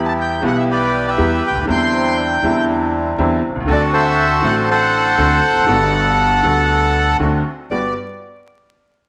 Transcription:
0.00 0.39 E2 medium
0.00 0.40 E2 medium
0.00 0.39 E3 medium
0.00 0.39 G3 medium
0.00 0.40 B3 medium
0.00 0.40 E4 medium
0.00 0.40 G4 medium
0.00 0.40 G4 loud
0.05 0.11 A5 medium
0.05 0.13 A5 medium
0.19 0.42 G5 medium
0.19 0.43 G5 medium
0.41 1.15 B1 medium
0.41 1.15 B2 medium
0.41 1.14 E3 medium
0.41 1.14 G3 medium
0.41 1.15 B3 medium
0.41 1.15 E4 medium
0.41 1.15 G4 medium
0.41 1.16 G4 medium
0.41 0.55 F#5 medium
0.47 0.57 F#5 medium
0.56 0.62 E5 medium
0.56 0.64 E5 medium
0.69 1.06 G4 medium
0.69 1.06 B4 medium
0.69 1.04 D5 medium
0.69 1.10 D5 medium
1.08 1.65 G4 medium
1.08 1.65 B4 medium
1.08 1.43 E5 medium
1.18 1.39 E2 medium
1.18 1.40 E2 loud
1.18 1.40 E3 medium
1.18 1.39 G3 medium
1.18 1.39 B3 medium
1.18 1.40 B3 medium
1.18 1.40 E4 medium
1.18 1.39 G4 medium
1.18 1.40 G4 medium
1.46 1.56 C#2 medium
1.46 1.55 C#2 medium
1.46 1.57 G5 medium
1.46 1.58 G5 loud
1.55 1.62 D2 medium
1.55 1.61 D2 medium
1.61 1.68 D#2 medium
1.61 2.38 D3 medium
1.67 2.39 E2 medium
1.67 2.40 E2 loud
1.67 2.39 E3 medium
1.67 2.39 G3 medium
1.67 2.39 C4 medium
1.67 2.40 C4 medium
1.67 2.40 D4 medium
1.67 2.40 E4 medium
1.67 2.65 G5 medium
1.72 2.17 C6 medium
1.72 2.17 C6 loud
1.94 2.17 C5 medium
2.17 2.41 D5 medium
2.42 3.14 E2 loud
2.42 3.15 E2 medium
2.42 3.14 D3 medium
2.42 3.15 E3 medium
2.42 3.15 G3 medium
2.42 3.14 C4 medium
2.42 3.15 C4 medium
2.42 3.15 D4 medium
2.42 3.15 E4 medium
2.42 3.16 E4 medium
2.42 2.69 E5 loud
2.68 3.15 D5 loud
3.18 3.39 E2 medium
3.18 3.39 D3 medium
3.18 3.39 E3 medium
3.18 3.39 G3 medium
3.18 3.39 C4 medium
3.18 3.39 D4 medium
3.18 3.39 E4 medium
3.18 3.53 C5 medium
3.49 3.55 B1 medium
3.55 3.62 C2 medium
3.60 3.67 C#2 medium
3.60 3.68 C#2 medium
3.66 4.39 D2 medium
3.66 4.39 D2 loud
3.66 4.39 D3 medium
3.66 4.38 A3 medium
3.66 4.39 C4 medium
3.66 4.39 C4 loud
3.66 4.39 D4 medium
3.66 4.39 F#4 loud
3.66 4.40 F#4 medium
3.66 4.64 F#4 medium
3.70 3.92 A4 medium
3.70 3.83 D5 loud
3.70 3.83 D5 medium
3.93 4.70 A4 medium
3.93 4.70 C5 medium
3.93 4.45 E5 loud
3.93 4.41 E5 medium
4.41 5.14 A1 medium
4.41 5.14 A1 loud
4.41 5.14 A2 medium
4.41 5.13 D3 medium
4.41 5.13 A3 medium
4.41 5.14 C4 medium
4.41 5.14 D4 medium
4.41 5.14 F#4 medium
4.41 5.15 F#4 medium
4.41 4.55 F#5 medium
4.45 4.56 F#5 loud
4.71 7.17 A4 medium
4.71 5.65 C5 medium
4.71 7.17 F#5 medium
4.71 7.17 F#5 loud
5.18 5.39 D2 medium
5.18 5.39 D3 medium
5.18 5.39 A3 medium
5.18 5.39 C4 medium
5.18 5.39 D4 medium
5.18 5.39 F#4 medium
5.50 5.55 E1 medium
5.50 5.56 E2 medium
5.56 5.60 F1 medium
5.56 5.62 F2 medium
5.61 5.66 F#1 medium
5.61 5.68 F#2 medium
5.66 6.39 G1 loud
5.66 6.39 G1 medium
5.66 6.39 G2 medium
5.66 6.39 D3 medium
5.66 6.39 G3 medium
5.66 6.40 G3 medium
5.66 6.40 B3 medium
5.66 6.40 F#4 loud
5.70 6.41 F#4 medium
6.42 7.16 D2 loud
6.42 7.16 D2 medium
6.42 7.16 D3 medium
6.42 7.16 G3 medium
6.42 7.16 B3 medium
6.42 7.16 F#4 medium
6.42 7.17 F#4 medium
7.19 7.41 D2 medium
7.19 7.41 D3 medium
7.19 7.41 A3 medium
7.19 7.41 C4 medium
7.19 7.42 D4 medium
7.19 7.41 F#4 medium
7.19 7.42 F#4 medium
7.70 7.91 G1 medium
7.70 7.92 G2 medium
7.70 7.92 G3 soft
7.70 7.92 B3 medium
7.70 7.92 F#4 medium
7.70 7.92 G4 medium
7.70 7.94 B4 medium
7.70 7.94 D5 medium

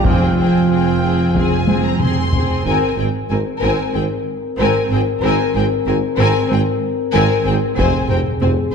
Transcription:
0.04 0.62 F1 soft
0.04 0.98 F2 soft
0.04 1.96 F3 soft
0.04 1.97 F3 soft
0.04 0.35 C4 soft
0.04 2.00 F4 soft
0.04 0.37 G#4 soft
0.04 0.37 G5 soft
0.04 taiko medium
0.36 0.68 C4 soft
0.36 0.70 G#4 soft
0.36 0.70 G5 soft
0.69 1.27 F1 soft
0.69 1.01 C4 soft
0.69 1.02 G#4 soft
0.69 1.32 G5 soft
1.03 1.34 C4 soft
1.03 1.34 G#4 soft
1.35 1.93 F1 soft
1.35 1.67 C4 soft
1.35 1.67 G#4 soft
1.35 1.84 G#5 soft
1.35 taiko medium
1.67 2.00 C4 soft
1.67 1.99 G#4 soft
1.67 taiko high medium
1.85 2.01 A#5 soft
2.00 2.58 F1 soft
2.00 2.33 C4 soft
2.00 2.32 G#4 soft
2.00 2.65 C6 soft
2.00 taiko mid medium
2.33 2.65 C4 soft
2.33 2.65 G#4 soft
2.33 taiko low medium
2.64 2.78 G#1 soft
2.64 2.74 G#1 soft
2.64 2.74 G#2 soft
2.64 7.74 C4 soft
2.64 2.96 C4 soft
2.64 7.74 A#4 soft
2.64 2.96 A#4 soft
2.64 2.96 G#5 soft
2.64 taiko soft
2.96 3.09 G#1 soft
2.96 3.06 G#1 soft
2.96 3.06 G#2 soft
2.96 3.06 C4 soft
2.96 3.06 G#4 soft
2.96 3.06 G5 soft
3.29 3.43 G#1 soft
3.29 3.39 G#1 soft
3.29 3.38 G#2 soft
3.29 3.39 C4 soft
3.29 3.39 A#4 soft
3.29 3.37 G#5 soft
3.62 3.75 G#1 soft
3.62 3.71 G#1 soft
3.62 3.70 G#2 soft
3.62 3.93 C4 soft
3.62 3.92 A#4 soft
3.62 3.92 G#5 soft
3.95 4.03 G#1 soft
3.95 4.08 G#1 soft
3.95 4.03 G#2 soft
3.95 4.03 C4 soft
3.95 4.03 G#4 soft
3.95 4.03 G5 soft
4.58 4.66 G#1 soft
4.58 4.72 G#1 soft
4.58 4.67 G#2 medium
4.58 4.89 C4 soft
4.58 4.89 A#4 soft
4.58 4.89 G#5 soft
4.91 4.99 G#1 soft
4.91 5.04 G#1 soft
4.91 5.00 G#2 soft
4.91 4.99 C4 soft
4.91 5.01 G#4 soft
4.91 5.00 G5 soft
5.23 5.31 G#1 medium
5.23 5.36 G#1 medium
5.23 5.32 G#2 medium
5.23 5.53 C4 soft
5.23 5.53 A#4 soft
5.23 5.54 G#5 medium
5.55 5.68 G#1 soft
5.55 5.63 G#1 soft
5.55 5.63 G#2 soft
5.55 5.63 C4 soft
5.55 5.63 G#4 soft
5.55 5.64 G5 soft
5.87 6.00 G#1 soft
5.87 5.95 G#1 soft
5.87 5.95 G#2 soft
5.87 5.95 C4 soft
5.87 5.95 A#4 soft
5.87 5.96 G#5 soft
6.18 6.31 G#1 medium
6.18 6.27 G#1 medium
6.18 6.27 G#2 medium
6.18 6.48 C4 medium
6.18 6.48 A#4 medium
6.18 6.49 G#5 medium
6.49 6.63 G#1 soft
6.49 6.58 G#1 soft
6.49 6.59 G#2 soft
6.49 6.57 C4 soft
6.49 6.60 G#4 soft
6.49 6.60 G5 soft
7.13 7.27 G#1 medium
7.13 7.22 G#1 medium
7.13 7.22 G#2 medium
7.13 7.44 C4 medium
7.13 7.44 A#4 medium
7.13 7.44 G#5 medium
7.45 7.53 G#1 soft
7.45 7.59 G#1 soft
7.45 7.55 G#2 soft
7.45 7.53 C4 soft
7.45 7.54 G#4 soft
7.45 7.55 G5 soft
7.76 7.90 F1 medium
7.76 7.86 F1 medium
7.76 7.84 F2 soft
7.76 7.87 F2 medium
7.76 8.75 C4 medium
7.76 8.08 C4 soft
7.76 8.75 G#4 medium
7.76 8.08 C5 medium
7.76 8.08 G#5 medium
7.76 taiko medium
7.85 7.91 F2 soft
7.92 7.99 F2 soft
8.00 8.06 F2 soft
8.08 8.22 F1 soft
8.08 8.18 F1 soft
8.08 8.14 F2 soft
8.08 8.18 F2 soft
8.08 8.18 C4 soft
8.08 8.18 A#4 soft
8.08 8.18 G5 soft
8.15 8.21 F2 soft
8.22 8.29 F2 soft
8.30 8.36 F2 soft
8.37 8.44 F2 soft
8.41 8.54 F1 soft
8.41 8.50 F1 soft
8.41 8.50 F2 soft
8.41 8.51 F2 soft
8.41 8.49 C4 soft
8.41 8.50 C5 soft
8.41 8.50 G#5 soft
8.53 8.59 F2 soft
8.60 8.66 F2 soft
8.67 8.73 F2 soft

